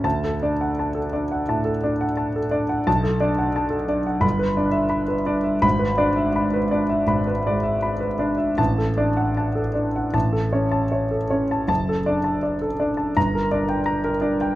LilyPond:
\new Staff \with { instrumentName = "Grand piano" } { \time 4/4 \key d \major \tempo 4 = 83 << { <d, a''>8 d'4 d'8 a,8 d'4 d'8 | <b,, a''>8 d'4 d'8 <g,, b''>8 d'4 d'8 | <gis,, b''>8 d'4 d'8 gis,,8 gis,4 d'8 | <a,, a''>8 d'4 d'8 <a,, a''>8 cis'4 cis'8 |
<fis,, a''>8 d'4 d'8 <g,, bes''>8 d'4 d'8 | } \\ { r16 a'16 d''16 fis''16 a''16 a'16 d''16 fis''16 a''16 a'16 d''16 fis''16 a''16 a'16 d''16 fis''16 | r16 a'16 d''16 fis''16 a''16 a'16 d''16 fis''16 r16 b'16 d''16 e''16 b''16 b'16 d''16 e''16 | r16 b'16 d''16 e''16 b''16 b'16 d''16 e''16 b''16 b'16 d''16 e''16 b''16 b'16 d''16 e''16 | r16 a'16 d''16 fis''16 a''16 a'16 d''16 fis''16 r16 a'16 cis''16 a''16 cis''16 a'16 cis''16 a''16 |
r16 a'16 d''16 a''16 d''16 a'16 d''16 a''16 r16 bes'16 d''16 g''16 bes''16 bes'16 d''16 g''16 | } >> }